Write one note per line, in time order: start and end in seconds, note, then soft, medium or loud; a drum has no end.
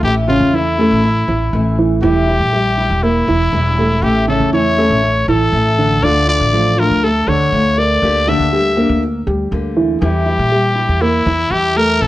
0.00 0.39 A1 medium
0.00 0.27 E3 medium
0.00 0.19 A3 medium
0.00 0.27 A3 medium
0.00 0.15 G4 medium
0.00 0.19 A4 medium
0.04 0.28 C#4 medium
0.04 0.26 E4 medium
0.28 0.49 C#3 medium
0.28 0.52 A3 soft
0.28 0.49 C#4 medium
0.28 0.53 C#4 medium
0.28 0.52 E4 medium
0.28 0.56 F4 medium
0.40 0.88 E2 medium
0.53 0.77 E3 medium
0.53 0.74 E3 medium
0.53 0.77 A3 medium
0.53 0.78 C#4 medium
0.53 0.74 E4 medium
0.53 1.79 E4 medium
0.53 0.76 E4 medium
0.77 1.19 A3 medium
0.77 1.02 A3 medium
0.77 1.03 C#4 medium
0.77 1.02 E4 medium
0.77 1.19 A4 medium
0.91 1.26 A1 medium
1.03 muted nylon-string guitar stroke medium
1.28 1.52 A1 medium
1.28 1.69 E3 medium
1.28 1.69 E4 medium
1.53 2.01 A1 medium
1.53 2.01 E3 soft
1.53 2.02 A3 medium
1.53 2.03 C#4 medium
1.53 2.03 E4 medium
1.78 1.99 E3 medium
1.78 1.99 E4 medium
2.02 2.39 E1 medium
2.02 2.27 E3 medium
2.02 2.44 E3 medium
2.02 2.27 G3 medium
2.02 2.44 E4 medium
2.02 2.26 E4 medium
2.02 3.05 G4 medium
2.28 2.53 G3 medium
2.28 2.52 E4 medium
2.41 2.88 A#1 medium
2.53 2.77 E3 soft
2.53 2.94 G3 medium
2.53 2.78 G3 medium
2.53 2.77 E4 medium
2.53 2.94 G4 medium
2.78 3.02 G3 medium
2.78 3.02 E4 medium
2.90 3.26 E1 medium
3.03 3.24 A#3 medium
3.03 4.04 E4 medium
3.03 3.24 A#4 medium
3.03 muted nylon-string guitar stroke medium
3.28 3.52 E1 medium
3.28 3.69 E3 medium
3.28 3.69 E4 medium
3.52 4.00 E1 medium
3.52 4.01 E3 soft
3.52 4.02 G3 medium
3.52 4.03 E4 medium
3.78 4.19 A3 medium
3.78 4.19 A4 medium
4.02 4.38 A1 medium
4.02 4.27 E3 medium
4.02 4.27 A3 medium
4.02 4.27 C#4 medium
4.02 4.26 E4 medium
4.02 4.28 G4 medium
4.27 4.49 C#3 medium
4.27 4.52 A3 medium
4.27 4.49 C#4 medium
4.27 4.52 C#4 medium
4.27 4.52 E4 medium
4.27 4.51 A4 medium
4.40 4.88 E2 medium
4.52 4.77 E3 soft
4.52 4.73 E3 medium
4.52 4.77 A3 soft
4.52 4.77 C#4 soft
4.52 4.74 E4 medium
4.52 4.76 E4 medium
4.52 5.24 C#5 medium
4.77 5.19 A3 medium
4.77 5.02 A3 soft
4.77 5.02 C#4 medium
4.77 5.01 E4 medium
4.77 5.19 A4 medium
4.90 5.26 A1 medium
5.03 muted nylon-string guitar stroke medium
5.28 5.52 A1 medium
5.28 5.69 E3 medium
5.28 5.69 E4 medium
5.28 6.05 A4 medium
5.52 6.00 A1 medium
5.52 6.02 E3 soft
5.52 6.02 A3 soft
5.52 6.02 C#4 soft
5.52 6.03 E4 medium
5.78 5.98 D3 medium
5.78 5.99 D4 medium
6.02 6.38 D2 medium
6.02 6.27 D3 medium
6.02 6.44 D3 medium
6.02 6.27 A3 medium
6.02 6.44 D4 medium
6.02 6.27 D4 medium
6.02 6.26 F4 medium
6.02 6.28 D5 medium
6.27 6.52 A3 soft
6.27 6.52 D4 medium
6.27 6.51 F4 medium
6.27 6.80 D5 loud
6.40 6.88 A1 medium
6.52 6.76 D3 soft
6.52 6.94 F3 medium
6.52 6.77 A3 soft
6.52 6.77 D4 medium
6.52 6.94 F4 medium
6.52 6.76 F4 medium
6.77 7.01 A3 medium
6.77 7.02 D4 medium
6.77 7.01 F4 medium
6.77 7.05 A#4 medium
6.90 7.26 D2 medium
7.02 7.23 A3 medium
7.02 7.24 A4 medium
7.02 7.30 A4 medium
7.02 muted nylon-string guitar stroke medium
7.27 7.51 D2 medium
7.27 7.68 D3 medium
7.27 7.69 D4 medium
7.27 7.80 C#5 medium
7.52 8.00 D2 medium
7.52 8.01 D3 soft
7.52 8.02 A3 medium
7.52 8.02 D4 medium
7.52 8.02 F4 soft
7.78 8.19 A#4 medium
7.78 8.30 D5 medium
8.02 8.38 D2 medium
8.02 8.26 D3 medium
8.02 8.27 A#3 medium
8.02 8.27 D4 medium
8.02 8.26 G4 medium
8.27 8.48 D3 medium
8.27 8.51 A#3 medium
8.27 8.48 D4 medium
8.27 8.52 D4 medium
8.27 8.51 G4 medium
8.27 9.03 E5 loud
8.39 8.87 D2 medium
8.52 8.76 D3 soft
8.52 8.73 G3 medium
8.52 8.76 A#3 soft
8.52 8.77 D4 soft
8.52 8.73 G4 medium
8.52 8.76 G4 medium
8.77 9.18 A#3 medium
8.77 9.02 A#3 soft
8.77 9.02 D4 medium
8.77 9.01 G4 medium
8.77 9.18 A#4 medium
8.89 9.25 D2 medium
9.02 muted nylon-string guitar stroke medium
9.27 9.51 D2 medium
9.27 9.68 G3 medium
9.27 9.68 G4 medium
9.51 9.99 D2 medium
9.51 10.00 D3 soft
9.51 10.01 A#3 soft
9.51 10.01 D4 soft
9.51 10.02 G4 medium
9.76 9.97 E3 medium
9.76 9.97 E4 medium
10.01 10.37 E2 loud
10.01 10.25 E3 medium
10.01 10.43 E3 medium
10.01 10.26 G3 medium
10.01 10.43 E4 medium
10.01 10.25 E4 medium
10.01 11.03 G4 medium
10.26 10.51 G3 medium
10.26 10.50 E4 medium
10.39 10.86 A#2 medium
10.51 10.75 E3 soft
10.51 10.93 G3 medium
10.51 10.76 G3 medium
10.51 10.74 E4 soft
10.51 10.93 G4 medium
10.75 11.00 G3 medium
10.75 11.00 E4 medium
10.89 11.24 E2 medium
11.01 11.22 A#3 medium
11.01 11.53 E4 medium
11.01 11.22 A#4 medium
11.01 muted nylon-string guitar stroke medium
11.26 11.50 E2 medium
11.26 11.67 E3 medium
11.26 11.68 E4 medium
11.51 11.99 E2 medium
11.51 11.99 E3 soft
11.51 12.01 G3 medium
11.51 12.01 E4 medium
11.51 11.78 G4 medium
11.76 12.07 A3 medium
11.76 12.07 A4 medium
11.76 12.03 A#4 loud
12.00 12.07 A1 medium
12.00 12.07 E3 medium
12.00 12.07 A3 medium
12.00 12.07 C#4 medium
12.00 12.07 E4 medium
12.00 12.07 A4 loud